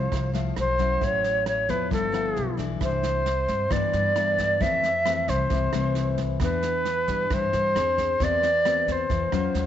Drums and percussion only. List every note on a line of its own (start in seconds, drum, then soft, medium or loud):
0.12 kick medium
0.12 cross-stick medium
0.12 snare soft
0.34 snare soft
0.56 cross-stick soft
0.56 snare soft
0.79 kick soft
0.79 snare soft
1.02 kick soft
1.02 snare soft
1.24 snare soft
1.46 cross-stick medium
1.46 snare soft
1.69 kick soft
1.69 snare soft
1.91 kick medium
1.91 snare soft
2.14 cross-stick soft
2.14 snare soft
2.36 snare soft
2.59 kick soft
2.59 snare soft
2.81 kick medium
2.81 cross-stick medium
2.81 snare soft
3.03 snare soft
3.26 snare soft
3.48 kick soft
3.48 snare soft
3.71 kick medium
3.71 cross-stick medium
3.71 snare soft
3.93 snare soft
4.16 cross-stick medium
4.16 snare soft
4.38 kick soft
4.38 snare soft
4.61 kick medium
4.61 snare soft
4.83 snare soft
5.05 cross-stick medium
5.05 snare soft
5.28 kick soft
5.28 snare soft
5.50 kick medium
5.50 snare soft
5.73 cross-stick medium
5.73 snare soft
5.95 snare soft
6.18 kick soft
6.18 snare soft
6.40 kick medium
6.40 cross-stick medium
6.40 snare soft
6.62 snare soft
6.85 snare soft
7.08 kick soft
7.08 snare soft
7.30 kick medium
7.30 cross-stick medium
7.30 snare soft
7.53 snare soft
7.76 cross-stick medium
7.76 snare soft
7.98 kick soft
7.98 snare soft
8.20 kick medium
8.20 snare soft
8.43 snare soft
8.65 cross-stick medium
8.65 snare soft
8.88 kick soft
8.88 snare soft
9.10 kick medium
9.10 snare soft
9.32 cross-stick medium
9.32 snare soft
9.55 snare soft